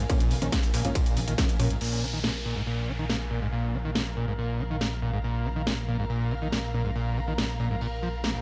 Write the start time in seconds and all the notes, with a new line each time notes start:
Already playing: A#4 F5 G#5
0.09 A#2 F3 A#3 C#4, kick, closed hi-hat, ride
0.20 A#1, closed hi-hat
0.31 B1 D#3, open hi-hat, ride
0.42 A#1 D#3 F3 A#3 C#4, closed hi-hat
0.52 A#2, kick, snare, closed hi-hat, ride
0.63 A#1, snare, closed hi-hat
0.73 A#1 A#2, snare, open hi-hat, ride
0.85 A#1 G#2 F3 A#3 C#4, closed hi-hat
0.95 A#2, kick, closed hi-hat, ride
1.06 A#1, closed hi-hat
1.16 A#1 D#3, open hi-hat, ride
1.27 A#1 D#3, closed hi-hat
1.38 A#2 F3 A#3 C#4, kick, snare, closed hi-hat, ride
1.49 A#1, closed hi-hat
1.59 A#2 F3 A#3 C#4, open hi-hat, ride
1.70 A#1 G#2, closed hi-hat
1.81 A#1 A#2 A#4, crash, ride, downlifter
2.02 D#3, ride
2.13 D#3
2.24 A#2, snare, ride
2.43 A#2 F5, ride
2.56 G#2
2.66 A#2, ride
2.78 ride
2.88 D#3, ride
2.99 D#3 A#5
3.10 A#2, snare, ride
3.21 snare
3.31 A#2, ride
3.42 G#2, ride
3.52 A#2, ride
3.74 D#3, ride
3.85 D#3
3.95 A#2, snare, ride
4.06 snare
4.16 A#2, ride
4.28 G#2
4.38 A#2, open hi-hat
4.60 D#3, ride
4.70 D#3
4.81 A#2, snare, ride
5.02 A#2, ride
5.13 G#2
5.24 A#2, ride
5.45 D#3, ride
5.56 D#3
5.67 A#2, snare, ride
5.88 A#2, ride
5.99 G#2
6.10 A#2, ride
6.20 ride
6.31 D#3, ride
6.42 D#3
6.52 A#2, snare, ride
6.64 snare
6.74 A#2, ride
6.85 G#2, ride
6.95 A#2, ride
7.16 D#3, ride
7.28 D#3
7.38 A#2, snare, ride
7.49 snare
7.60 A#2, ride
7.71 G#2
7.81 A#2, open hi-hat
8.02 F3, ride
8.24 A#3, snare, ride
8.35 A#1